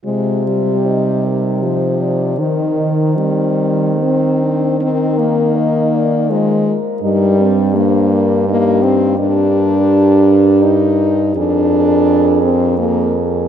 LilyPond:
<<
  \new Staff \with { instrumentName = "French horn" } { \time 3/4 \key c \minor \tempo 4 = 82 c''4 ees''8 bes'8 c''8 d''8 | c''8 c''2~ c''8 | bes'4 ees''8 d''8 c''8 bes'8 | bes'8 r8 c''8 bes'8 g'4 |
\key g \phrygian bes'2. | bes'2 bes'4 | }
  \new Staff \with { instrumentName = "French horn" } { \time 3/4 \key c \minor f'4 ees'2 | ees'4 c'4 c'8 d'8 | ees'4 ees'4 f'8 r8 | ees'8 c'8 d'4 ees'4 |
\key g \phrygian g'2. | aes'2 aes'4 | }
  \new Staff \with { instrumentName = "French horn" } { \time 3/4 \key c \minor aes8 g4. f4 | ees4 g4 c'4 | c'8 bes4. aes8 r8 | g4 bes4 bes8 c'8 |
\key g \phrygian d'2 ees'4 | d'4. c'8 bes8 r8 | }
  \new Staff \with { instrumentName = "French horn" } { \clef bass \time 3/4 \key c \minor c2. | ees2.~ | ees2~ ees8 r8 | g,2. |
\key g \phrygian g,2. | f,2. | }
>>